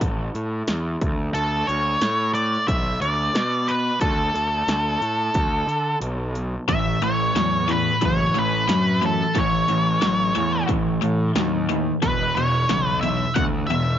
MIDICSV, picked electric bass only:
0, 0, Header, 1, 2, 480
1, 0, Start_track
1, 0, Tempo, 667408
1, 967, Time_signature, 4, 2, 24, 8
1, 10059, End_track
2, 0, Start_track
2, 0, Title_t, "Picked electric bass"
2, 0, Program_c, 0, 34
2, 11, Note_on_c, 0, 33, 84
2, 205, Note_off_c, 0, 33, 0
2, 249, Note_on_c, 0, 45, 83
2, 444, Note_off_c, 0, 45, 0
2, 494, Note_on_c, 0, 40, 73
2, 687, Note_off_c, 0, 40, 0
2, 731, Note_on_c, 0, 38, 78
2, 926, Note_off_c, 0, 38, 0
2, 967, Note_on_c, 0, 38, 80
2, 1163, Note_off_c, 0, 38, 0
2, 1210, Note_on_c, 0, 38, 80
2, 1405, Note_off_c, 0, 38, 0
2, 1451, Note_on_c, 0, 45, 81
2, 1843, Note_off_c, 0, 45, 0
2, 1934, Note_on_c, 0, 35, 79
2, 2128, Note_off_c, 0, 35, 0
2, 2163, Note_on_c, 0, 38, 82
2, 2362, Note_off_c, 0, 38, 0
2, 2404, Note_on_c, 0, 47, 75
2, 2799, Note_off_c, 0, 47, 0
2, 2890, Note_on_c, 0, 38, 79
2, 3086, Note_off_c, 0, 38, 0
2, 3123, Note_on_c, 0, 38, 75
2, 3322, Note_off_c, 0, 38, 0
2, 3365, Note_on_c, 0, 38, 79
2, 3563, Note_off_c, 0, 38, 0
2, 3605, Note_on_c, 0, 45, 73
2, 3803, Note_off_c, 0, 45, 0
2, 3846, Note_on_c, 0, 38, 73
2, 4044, Note_off_c, 0, 38, 0
2, 4078, Note_on_c, 0, 50, 74
2, 4279, Note_off_c, 0, 50, 0
2, 4324, Note_on_c, 0, 35, 74
2, 4719, Note_off_c, 0, 35, 0
2, 4808, Note_on_c, 0, 33, 73
2, 5005, Note_off_c, 0, 33, 0
2, 5042, Note_on_c, 0, 33, 74
2, 5242, Note_off_c, 0, 33, 0
2, 5287, Note_on_c, 0, 40, 82
2, 5681, Note_off_c, 0, 40, 0
2, 5769, Note_on_c, 0, 30, 82
2, 5966, Note_off_c, 0, 30, 0
2, 6009, Note_on_c, 0, 33, 80
2, 6206, Note_off_c, 0, 33, 0
2, 6244, Note_on_c, 0, 42, 78
2, 6639, Note_off_c, 0, 42, 0
2, 6729, Note_on_c, 0, 33, 77
2, 6925, Note_off_c, 0, 33, 0
2, 6971, Note_on_c, 0, 33, 79
2, 7167, Note_off_c, 0, 33, 0
2, 7210, Note_on_c, 0, 33, 81
2, 7406, Note_off_c, 0, 33, 0
2, 7450, Note_on_c, 0, 40, 74
2, 7646, Note_off_c, 0, 40, 0
2, 7689, Note_on_c, 0, 33, 79
2, 7885, Note_off_c, 0, 33, 0
2, 7933, Note_on_c, 0, 45, 76
2, 8128, Note_off_c, 0, 45, 0
2, 8168, Note_on_c, 0, 39, 81
2, 8561, Note_off_c, 0, 39, 0
2, 8649, Note_on_c, 0, 28, 77
2, 8846, Note_off_c, 0, 28, 0
2, 8892, Note_on_c, 0, 28, 76
2, 9087, Note_off_c, 0, 28, 0
2, 9128, Note_on_c, 0, 35, 80
2, 9521, Note_off_c, 0, 35, 0
2, 9608, Note_on_c, 0, 38, 76
2, 9805, Note_off_c, 0, 38, 0
2, 9847, Note_on_c, 0, 28, 77
2, 10044, Note_off_c, 0, 28, 0
2, 10059, End_track
0, 0, End_of_file